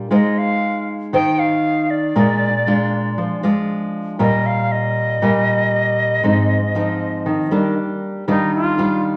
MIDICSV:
0, 0, Header, 1, 3, 480
1, 0, Start_track
1, 0, Key_signature, -3, "major"
1, 0, Tempo, 509771
1, 107, Time_signature, 4, 2, 24, 8
1, 8631, End_track
2, 0, Start_track
2, 0, Title_t, "Flute"
2, 0, Program_c, 0, 73
2, 119, Note_on_c, 0, 75, 78
2, 359, Note_on_c, 0, 77, 89
2, 373, Note_off_c, 0, 75, 0
2, 834, Note_off_c, 0, 77, 0
2, 1074, Note_on_c, 0, 79, 102
2, 1310, Note_on_c, 0, 77, 90
2, 1324, Note_off_c, 0, 79, 0
2, 1792, Note_on_c, 0, 74, 87
2, 1806, Note_off_c, 0, 77, 0
2, 3231, Note_off_c, 0, 74, 0
2, 3965, Note_on_c, 0, 75, 85
2, 4201, Note_on_c, 0, 77, 83
2, 4215, Note_off_c, 0, 75, 0
2, 4442, Note_on_c, 0, 75, 85
2, 4456, Note_off_c, 0, 77, 0
2, 7316, Note_off_c, 0, 75, 0
2, 7799, Note_on_c, 0, 63, 86
2, 8018, Note_off_c, 0, 63, 0
2, 8046, Note_on_c, 0, 65, 95
2, 8485, Note_off_c, 0, 65, 0
2, 8631, End_track
3, 0, Start_track
3, 0, Title_t, "Nylon-string guitar"
3, 0, Program_c, 1, 24
3, 100, Note_on_c, 1, 56, 68
3, 104, Note_on_c, 1, 63, 53
3, 107, Note_on_c, 1, 65, 50
3, 113, Note_on_c, 1, 72, 57
3, 1028, Note_off_c, 1, 63, 0
3, 1030, Note_off_c, 1, 65, 0
3, 1032, Note_off_c, 1, 72, 0
3, 1040, Note_off_c, 1, 56, 0
3, 1064, Note_on_c, 1, 51, 61
3, 1071, Note_on_c, 1, 63, 54
3, 1075, Note_on_c, 1, 72, 52
3, 1076, Note_on_c, 1, 65, 49
3, 1714, Note_off_c, 1, 63, 0
3, 1714, Note_off_c, 1, 65, 0
3, 1717, Note_off_c, 1, 72, 0
3, 2004, Note_off_c, 1, 51, 0
3, 2029, Note_on_c, 1, 46, 68
3, 2032, Note_on_c, 1, 56, 61
3, 2033, Note_on_c, 1, 62, 55
3, 2038, Note_on_c, 1, 65, 58
3, 2338, Note_off_c, 1, 56, 0
3, 2340, Note_off_c, 1, 62, 0
3, 2342, Note_off_c, 1, 65, 0
3, 2514, Note_on_c, 1, 56, 54
3, 2520, Note_on_c, 1, 62, 55
3, 2522, Note_on_c, 1, 65, 53
3, 2966, Note_off_c, 1, 46, 0
3, 2992, Note_on_c, 1, 53, 64
3, 3193, Note_off_c, 1, 56, 0
3, 3196, Note_off_c, 1, 65, 0
3, 3197, Note_off_c, 1, 62, 0
3, 3232, Note_on_c, 1, 56, 53
3, 3237, Note_on_c, 1, 62, 62
3, 3242, Note_on_c, 1, 65, 59
3, 3912, Note_off_c, 1, 56, 0
3, 3915, Note_off_c, 1, 62, 0
3, 3916, Note_off_c, 1, 65, 0
3, 3927, Note_off_c, 1, 53, 0
3, 3947, Note_on_c, 1, 46, 68
3, 3950, Note_on_c, 1, 55, 60
3, 3955, Note_on_c, 1, 65, 63
3, 4870, Note_off_c, 1, 55, 0
3, 4874, Note_off_c, 1, 65, 0
3, 4884, Note_off_c, 1, 46, 0
3, 4915, Note_on_c, 1, 46, 65
3, 4918, Note_on_c, 1, 55, 56
3, 4926, Note_on_c, 1, 65, 60
3, 5834, Note_off_c, 1, 55, 0
3, 5839, Note_off_c, 1, 65, 0
3, 5849, Note_off_c, 1, 46, 0
3, 5869, Note_on_c, 1, 53, 47
3, 5871, Note_on_c, 1, 44, 64
3, 5876, Note_on_c, 1, 60, 51
3, 5878, Note_on_c, 1, 63, 54
3, 6178, Note_off_c, 1, 53, 0
3, 6182, Note_off_c, 1, 60, 0
3, 6183, Note_off_c, 1, 63, 0
3, 6355, Note_on_c, 1, 53, 46
3, 6361, Note_on_c, 1, 60, 49
3, 6365, Note_on_c, 1, 63, 58
3, 6807, Note_off_c, 1, 44, 0
3, 6835, Note_on_c, 1, 51, 64
3, 7034, Note_off_c, 1, 53, 0
3, 7036, Note_off_c, 1, 60, 0
3, 7039, Note_off_c, 1, 63, 0
3, 7074, Note_on_c, 1, 55, 56
3, 7078, Note_on_c, 1, 58, 51
3, 7083, Note_on_c, 1, 62, 51
3, 7288, Note_off_c, 1, 51, 0
3, 7754, Note_off_c, 1, 55, 0
3, 7755, Note_off_c, 1, 58, 0
3, 7758, Note_off_c, 1, 62, 0
3, 7793, Note_on_c, 1, 51, 66
3, 7796, Note_on_c, 1, 55, 53
3, 7799, Note_on_c, 1, 65, 57
3, 7801, Note_on_c, 1, 62, 53
3, 8234, Note_off_c, 1, 55, 0
3, 8235, Note_off_c, 1, 62, 0
3, 8236, Note_off_c, 1, 65, 0
3, 8268, Note_on_c, 1, 55, 46
3, 8272, Note_on_c, 1, 62, 49
3, 8278, Note_on_c, 1, 65, 62
3, 8631, Note_off_c, 1, 51, 0
3, 8631, Note_off_c, 1, 55, 0
3, 8631, Note_off_c, 1, 62, 0
3, 8631, Note_off_c, 1, 65, 0
3, 8631, End_track
0, 0, End_of_file